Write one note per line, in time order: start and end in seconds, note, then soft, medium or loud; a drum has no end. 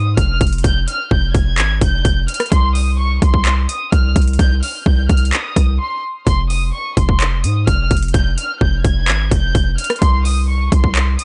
0.00 0.16 G#2 loud
0.00 0.12 D#6 medium
0.17 0.40 F1 loud
0.17 0.36 F6 medium
0.17 kick loud
0.17 closed hi-hat medium
0.41 0.63 F1 loud
0.41 kick loud
0.41 closed hi-hat medium
0.47 closed hi-hat medium
0.53 closed hi-hat medium
0.58 closed hi-hat soft
0.64 0.87 F1 loud
0.64 0.83 G6 medium
0.64 kick loud
0.64 closed hi-hat medium
0.88 1.06 F6 medium
0.88 closed hi-hat medium
1.11 1.34 F1 loud
1.11 1.30 G6 medium
1.11 kick medium
1.35 1.59 F1 loud
1.35 1.79 G#6 medium
1.35 kick loud
1.35 closed hi-hat medium
1.58 1.80 G#1 loud
1.58 clap loud
1.58 closed hi-hat medium
1.81 2.04 F1 loud
1.81 2.26 G6 medium
1.81 kick loud
1.81 closed hi-hat medium
2.05 2.27 F1 loud
2.05 kick loud
2.05 closed hi-hat medium
2.28 2.47 F6 medium
2.28 closed hi-hat medium
2.34 closed hi-hat medium
2.40 cross-stick loud
2.40 closed hi-hat medium
2.46 closed hi-hat soft
2.52 3.19 C2 loud
2.52 2.70 C6 loud
2.52 kick loud
2.52 closed hi-hat medium
2.75 2.94 D#6 medium
2.75 open hi-hat medium
2.99 3.17 C#6 medium
3.22 3.67 C2 loud
3.22 3.66 C6 medium
3.22 kick loud
3.22 closed hi-hat medium
3.34 kick loud
3.45 clap loud
3.45 closed hi-hat medium
3.69 3.87 D#6 medium
3.69 closed hi-hat loud
3.92 4.15 C2 loud
3.92 4.11 F6 medium
3.92 kick loud
3.92 closed hi-hat medium
4.16 4.38 C2 loud
4.16 kick loud
4.16 closed hi-hat medium
4.22 closed hi-hat medium
4.28 closed hi-hat medium
4.33 closed hi-hat soft
4.39 4.62 C2 loud
4.39 4.58 G6 loud
4.39 kick loud
4.39 closed hi-hat medium
4.62 4.81 F6 medium
4.62 open hi-hat medium
4.86 5.09 C2 loud
4.86 5.05 G6 medium
4.86 kick medium
5.09 5.32 C2 loud
5.09 5.28 F6 medium
5.09 kick loud
5.09 closed hi-hat medium
5.17 closed hi-hat medium
5.25 closed hi-hat medium
5.33 5.77 D#6 medium
5.33 clap loud
5.33 closed hi-hat medium
5.56 5.79 C2 loud
5.56 kick loud
5.56 cross-stick medium
5.56 closed hi-hat medium
5.80 5.98 C6 medium
6.27 6.72 F1 loud
6.27 6.45 C6 loud
6.27 kick loud
6.27 closed hi-hat medium
6.50 6.69 D#6 medium
6.50 open hi-hat medium
6.73 6.92 C#6 medium
6.97 7.45 F1 loud
6.97 7.41 C6 medium
6.97 kick loud
6.97 closed hi-hat medium
7.09 kick loud
7.20 clap loud
7.20 closed hi-hat medium
7.44 7.66 G#2 loud
7.44 7.62 D#6 medium
7.44 closed hi-hat loud
7.67 7.90 F1 loud
7.67 7.86 F6 medium
7.67 kick loud
7.67 closed hi-hat medium
7.91 8.13 F1 loud
7.91 kick loud
7.91 closed hi-hat medium
7.97 closed hi-hat medium
8.03 closed hi-hat medium
8.08 closed hi-hat soft
8.14 8.37 F1 loud
8.14 8.33 G6 loud
8.14 kick loud
8.14 closed hi-hat medium
8.38 8.56 F6 medium
8.38 closed hi-hat medium
8.61 8.84 F1 loud
8.61 8.80 G6 medium
8.61 kick loud
8.85 9.10 F1 loud
8.85 9.29 G#6 medium
8.85 kick loud
8.85 closed hi-hat medium
9.08 9.30 G#1 loud
9.08 clap loud
9.08 closed hi-hat medium
9.31 9.54 F1 loud
9.31 9.76 G6 medium
9.31 kick loud
9.31 closed hi-hat medium
9.55 9.77 F1 loud
9.55 kick loud
9.55 closed hi-hat medium
9.78 9.97 F6 medium
9.78 closed hi-hat medium
9.84 closed hi-hat medium
9.90 cross-stick loud
9.90 closed hi-hat medium
9.96 closed hi-hat soft
10.02 10.69 C2 loud
10.02 10.20 C6 loud
10.02 kick loud
10.02 closed hi-hat medium
10.25 10.44 D#6 medium
10.25 open hi-hat medium
10.49 10.67 C#6 medium
10.72 11.17 C2 loud
10.72 11.16 C6 medium
10.72 kick loud
10.72 closed hi-hat medium
10.84 kick loud
10.95 clap loud
10.95 closed hi-hat medium
11.19 11.24 D#6 medium
11.19 closed hi-hat medium